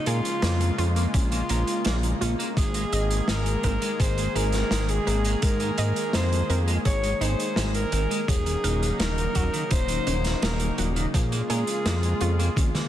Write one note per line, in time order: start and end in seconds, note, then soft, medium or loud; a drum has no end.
0.00 2.53 C#3 medium
0.00 2.54 G#3 medium
0.00 8.24 A#3 medium
0.00 2.54 F4 medium
0.06 0.21 A#2 medium
0.06 0.87 F4 loud
0.06 0.27 G#4 loud
0.06 0.16 A#4 medium
0.06 closed hi-hat medium
0.25 closed hi-hat medium
0.42 0.71 F2 loud
0.42 0.51 A#3 loud
0.42 snare loud
0.42 closed hi-hat loud
0.61 closed hi-hat medium
0.78 1.07 F2 medium
0.78 0.87 C#4 medium
0.78 0.90 F4 loud
0.78 closed hi-hat medium
0.96 1.05 A#3 loud
0.96 closed hi-hat medium
1.14 1.42 A#1 medium
1.14 1.26 C#4 medium
1.14 2.17 F4 medium
1.14 kick loud
1.14 closed hi-hat medium
1.32 1.41 A#3 medium
1.32 closed hi-hat medium
1.49 1.64 A#1 medium
1.49 1.69 A#3 medium
1.49 1.59 A#4 medium
1.49 closed hi-hat medium
1.67 closed hi-hat medium
1.85 2.14 A#1 medium
1.85 1.94 A#3 loud
1.85 snare loud
1.85 closed hi-hat loud
2.03 closed hi-hat medium
2.21 2.35 A#1 medium
2.21 2.30 C#4 medium
2.21 2.41 F4 medium
2.21 closed hi-hat medium
2.39 2.48 A#3 loud
2.39 closed hi-hat medium
2.57 2.85 G#1 loud
2.57 8.24 D#3 medium
2.57 2.77 G#3 medium
2.57 8.24 G#3 medium
2.57 3.30 G#4 loud
2.57 8.24 G#4 medium
2.57 kick loud
2.57 closed hi-hat medium
2.74 2.84 G#3 medium
2.74 closed hi-hat medium
2.92 3.21 G#1 loud
2.92 3.02 G#4 medium
2.92 3.12 D#5 loud
2.92 closed hi-hat medium
3.11 closed hi-hat medium
3.28 3.57 G#1 medium
3.28 3.37 G#3 loud
3.28 4.01 A#4 loud
3.28 snare loud
3.28 closed hi-hat medium
3.46 closed hi-hat medium
3.63 3.78 G#1 medium
3.63 3.73 C4 medium
3.63 3.76 A#4 loud
3.63 kick medium
3.63 closed hi-hat medium
3.82 3.91 G#3 loud
3.82 closed hi-hat medium
4.00 4.28 G#1 medium
4.00 4.12 G#4 medium
4.00 4.37 C5 loud
4.00 kick loud
4.00 closed hi-hat medium
4.17 4.26 G#3 medium
4.17 closed hi-hat medium
4.35 4.64 G#1 medium
4.35 4.55 D#4 medium
4.35 4.44 G#4 medium
4.35 4.91 A#4 loud
4.35 closed hi-hat medium
4.52 snare soft
4.52 closed hi-hat medium
4.71 5.00 G#1 loud
4.71 4.80 G#3 loud
4.71 snare loud
4.71 closed hi-hat loud
4.89 5.44 G#4 loud
4.89 closed hi-hat medium
5.07 5.35 G#1 loud
5.07 5.16 C4 medium
5.07 5.27 A#4 medium
5.07 closed hi-hat medium
5.25 5.34 G#3 loud
5.25 closed hi-hat medium
5.42 5.71 G#2 medium
5.42 5.62 G#3 medium
5.42 6.16 A#4 loud
5.42 kick loud
5.42 closed hi-hat loud
5.60 5.69 G#3 medium
5.60 closed hi-hat medium
5.78 5.93 G#2 medium
5.78 5.87 G#4 medium
5.78 5.98 D#5 loud
5.78 closed hi-hat medium
5.96 closed hi-hat medium
6.13 6.42 F2 loud
6.13 6.23 G#3 loud
6.13 6.59 C5 loud
6.13 snare loud
6.13 closed hi-hat loud
6.32 closed hi-hat medium
6.50 6.78 F2 loud
6.50 6.59 C4 medium
6.50 6.62 A#4 loud
6.50 closed hi-hat soft
6.68 6.77 G#3 loud
6.68 closed hi-hat medium
6.85 7.14 G#1 loud
6.85 6.97 G#4 medium
6.85 7.23 C#5 loud
6.85 kick loud
6.85 closed hi-hat medium
7.03 7.12 G#3 medium
7.03 closed hi-hat medium
7.21 7.35 G#1 medium
7.21 7.41 D#4 medium
7.21 7.30 G#4 medium
7.21 7.74 C5 loud
7.21 closed hi-hat medium
7.40 closed hi-hat medium
7.56 7.85 G#1 medium
7.56 7.66 G#3 loud
7.56 snare loud
7.56 closed hi-hat loud
7.74 8.30 A#4 loud
7.74 closed hi-hat medium
7.92 8.07 G#1 loud
7.92 8.02 C4 medium
7.92 8.12 A#4 medium
7.92 closed hi-hat medium
8.10 8.19 G#3 loud
8.10 closed hi-hat medium
8.28 8.57 D#1 loud
8.28 12.88 C#3 medium
8.28 8.48 F#3 medium
8.28 11.11 F#3 medium
8.28 12.88 A#3 medium
8.28 11.11 D#4 medium
8.28 8.99 G#4 loud
8.28 kick loud
8.28 closed hi-hat loud
8.46 8.55 D#3 medium
8.46 closed hi-hat medium
8.64 8.92 D#1 loud
8.64 8.73 D#4 medium
8.64 8.84 A#4 loud
8.64 closed hi-hat medium
8.83 closed hi-hat medium
9.00 9.28 D#1 medium
9.00 9.09 D#3 loud
9.00 9.67 A#4 loud
9.00 snare loud
9.00 closed hi-hat loud
9.18 closed hi-hat medium
9.35 9.50 D#1 medium
9.35 9.44 F#3 medium
9.35 9.47 F#4 loud
9.35 kick medium
9.35 closed hi-hat medium
9.53 9.62 D#3 loud
9.53 closed hi-hat medium
9.71 10.00 D#1 medium
9.71 9.83 D#4 medium
9.71 10.44 C5 loud
9.71 kick loud
9.71 closed hi-hat loud
9.88 9.98 D#3 medium
9.88 closed hi-hat medium
10.07 10.35 D#1 medium
10.07 10.27 C#4 medium
10.07 10.16 D#4 medium
10.07 closed hi-hat medium
10.24 snare soft
10.24 closed hi-hat medium
10.42 10.71 D#1 loud
10.42 10.52 D#3 loud
10.42 10.87 A#4 loud
10.42 snare loud
10.42 closed hi-hat loud
10.60 closed hi-hat medium
10.78 11.07 D#1 loud
10.78 10.87 F#3 medium
10.78 10.98 F#4 medium
10.78 closed hi-hat medium
10.96 11.05 D#3 loud
10.96 closed hi-hat medium
11.14 11.42 A#2 medium
11.14 11.34 F3 medium
11.14 12.88 G#3 medium
11.14 12.88 F4 medium
11.14 12.88 G#4 loud
11.14 kick loud
11.14 closed hi-hat medium
11.32 11.41 A#3 medium
11.32 closed hi-hat medium
11.50 11.64 A#2 medium
11.50 11.69 G#4 loud
11.50 11.59 A#4 medium
11.50 closed hi-hat medium
11.67 closed hi-hat medium
11.85 12.14 F2 loud
11.85 11.94 A#3 loud
11.85 snare loud
11.85 closed hi-hat loud
12.03 closed hi-hat medium
12.21 12.50 F2 loud
12.21 12.30 C#4 medium
12.21 12.33 F4 loud
12.21 closed hi-hat medium
12.39 12.48 A#3 loud
12.39 closed hi-hat medium
12.56 12.71 A#1 medium
12.56 12.69 C#4 medium
12.56 kick loud
12.56 closed hi-hat medium
12.56 high tom medium
12.75 12.84 A#3 medium
12.75 snare soft
12.75 closed hi-hat medium
12.75 high tom medium